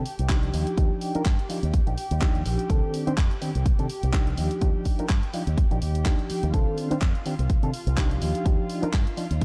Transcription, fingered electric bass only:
0.19 C2
0.54 D#2
0.77 D#2
1.15 muted fingered electric bass stroke
1.26 G2
1.63 D#2
1.87 A#1
2.11 D#2
2.46 A#1
2.70 C2
3.07 muted fingered electric bass stroke
3.18 F2
3.55 C2
3.79 C3
4.03 C2
4.38 D#2
4.62 D#2
4.99 muted fingered electric bass stroke
5.10 G2
5.47 D#2
5.71 A#1
5.82 D#2
6.30 muted fingered electric bass stroke
6.43 D#2
6.54 C2
6.91 muted fingered electric bass stroke
7.02 F2
7.39 C2
7.63 C3
7.87 C2
8.21 D#2
8.46 D#2
8.83 muted fingered electric bass stroke
8.94 G2
9.31 D#2

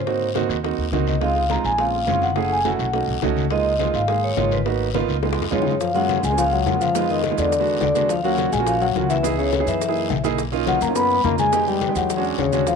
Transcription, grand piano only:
0.06 A#3 C4 D#4 F#4
0.34 A#3 C4 D#4 F#4
0.63 A#3 C4 D#4 F#4
0.92 A#3 C4 D#4 F#4
1.21 G#3 C4 D#4 F4
1.49 G#3 C4 D#4 F4
1.78 G#3 C4 C#4 F4
2.07 G#3 C4 C#4 F4
2.36 A3 C#4 E4 G#4
2.64 A3 C#4 E4 F#4
2.93 A3 C#4 D#4 F#4
3.22 A3 C#4 D#4 F#4
3.51 G#3 A#3 D#4 F4
3.79 G#3 A#3 D#4 F4
4.08 G#3 A#3 D#4 G#4
4.36 G#3 A#3 D#4 F4
4.65 A#3 B3 D#4 F#4
4.94 A#3 B3 D#4 F4
5.23 G#3 B3 D#4 F4
5.51 G#3 B3 D#4 F4
5.95 G#3 A#3 C#4 F4
6.30 G#3 A#3 C#4 F4
6.66 G#3 A#3 C#4 F4
6.95 G#3 B3 D#4 F4
7.30 G#3 B3 D#4 F4
7.59 G#3 B3 D4 F#4
7.95 G#3 B3 D4 F#4
8.23 A#3 C#4 F4 F#4
8.59 A#3 C#4 F4 F#4
8.95 A#3 C#4 F4 F#4
9.23 B3 D#4 E4 G#4
9.59 B3 D#4 E4 G#4
9.88 A#3 D#4 E4 G#4
10.24 A#3 D#4 E4 G#4
10.52 A#3 C#4 D#4 F4
10.88 A#3 C#4 D#4 F4
11.24 A#3 C#4 D#4 F4
11.52 G#3 B3 D#4 G4
11.88 G#3 B3 D#4 G4
12.17 G#3 C#4 D4 F#4
12.52 G#3 C#4 D4 F#4

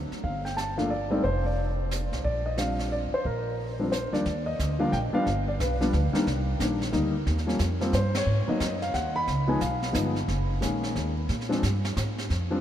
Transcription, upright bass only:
0.11 muted upright bass stroke
0.24 G1
1.24 F1
2.12 B1
2.24 A#1
3.12 muted upright bass stroke
3.25 A#1
4.13 muted upright bass stroke
4.25 D#2
4.59 D2
4.93 A#1
5.27 G1
5.60 B1
5.93 D2
6.13 muted upright bass stroke
6.27 C2
6.60 A#1
6.93 D2
7.26 D#2
7.59 F2
7.93 G2
8.26 G#2
8.47 muted upright bass stroke
8.60 F#2
8.94 D#2
9.28 C#2
9.61 B1
9.95 G1
10.28 F#1
10.62 A#1
10.95 D#2
11.29 A#2
11.63 G2
11.97 G#2
12.30 F2

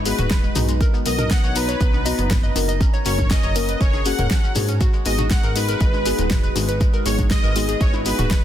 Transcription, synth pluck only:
0.06 G#3
0.19 F#4
0.31 G#3
0.44 G#3
0.56 D#4
0.69 G#3
0.81 A#4
0.94 B3
1.06 B3
1.19 A#4
1.31 B3
1.44 C#5
1.56 B3
1.69 C#5
1.81 B3
1.94 B3
2.05 D#5
2.18 B3
2.30 B3
2.43 D#5
2.55 B3
2.68 D#5
2.80 C#4
2.94 C#5
3.06 C#4
3.18 C#4
3.31 C#4
3.43 C#5
3.55 C#4
3.68 B4
3.80 C#4
3.93 G#4
4.05 C#4
4.18 A#4
4.30 C#4
4.43 C#4
4.55 C#5
4.69 C#4
4.81 F#4
4.93 G#3
5.05 G#3
5.18 F#4
5.30 G#3
5.43 A#4
5.55 G#3
5.68 A#4
5.81 G#3
5.94 G#3
6.06 B4
6.18 G#3
6.43 B4
6.56 G#3
6.69 B4
6.81 G#3
6.94 A#4
7.06 G#3
7.19 G#3
7.31 G#3
7.44 A#4
7.56 G#3
7.69 G#4
7.81 G#3
7.94 E4
8.06 G#3
8.19 F#4
8.31 G#3

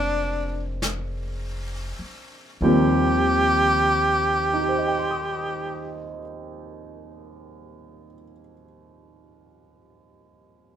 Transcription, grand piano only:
Already playing: F3 G#3 A#3 C4 D4
2.62 D#2 D#3 F3 G3 C4
4.53 D#4
4.61 G4
4.69 C5
4.78 D#5
4.88 G5
4.98 C6
5.11 D#6

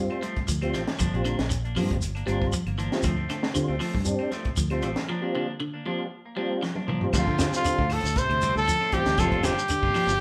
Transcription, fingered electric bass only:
0.49 D2
0.74 A1
1.00 G1
1.14 A#1
1.39 A#1
1.76 G2
1.91 G1
2.27 G1
2.66 G1
3.04 D2
3.56 D3
3.69 D2
3.95 G2
4.57 D2
4.83 A1
7.14 D2
7.27 D3
7.65 muted fingered electric bass stroke
7.79 D2
8.04 D2
8.29 D2
8.56 D2
9.06 D2
9.18 G1
9.32 F1
9.83 G1
10.07 G1

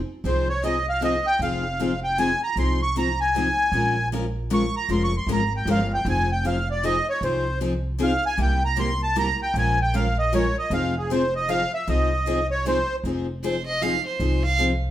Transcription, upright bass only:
0.24 C2
1.39 F1
2.56 C2
3.72 A#1
4.89 F1
5.27 G#1
5.65 G1
6.05 F1
7.21 C2
8.38 C2
9.54 A#1
10.70 F1
11.88 C2
13.04 F1
14.20 C2

